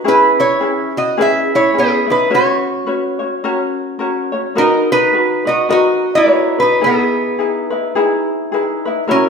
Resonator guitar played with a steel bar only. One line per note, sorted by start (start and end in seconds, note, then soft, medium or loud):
0.08 0.37 E4 medium
0.08 0.41 B4 medium
0.40 0.92 E4 medium
0.40 0.98 C#5 medium
0.97 1.18 F#4 medium
0.97 1.21 D#5 medium
1.21 1.50 G#4 medium
1.21 1.51 E5 loud
1.55 1.75 E4 medium
1.55 1.78 C#5 medium
1.78 2.07 B3 medium
1.78 2.11 G#4 medium
2.10 2.31 D#4 medium
2.10 2.34 B4 medium
2.34 3.18 F#4 medium
2.34 3.19 C#5 medium
4.58 4.89 D#4 medium
4.58 4.92 A#4 medium
4.92 5.44 D#4 medium
4.92 5.49 B4 loud
5.47 5.70 F#4 medium
5.47 5.69 D#5 medium
5.70 6.13 F#4 medium
5.70 6.15 D#5 medium
6.15 6.58 E4 medium
6.15 6.32 D5 medium
6.32 6.59 C#5 medium
6.60 6.83 D#4 medium
6.60 6.84 B4 medium
6.84 8.83 B3 medium
6.84 8.82 G#4 medium
9.11 9.29 C#4 medium
9.11 9.29 A#4 medium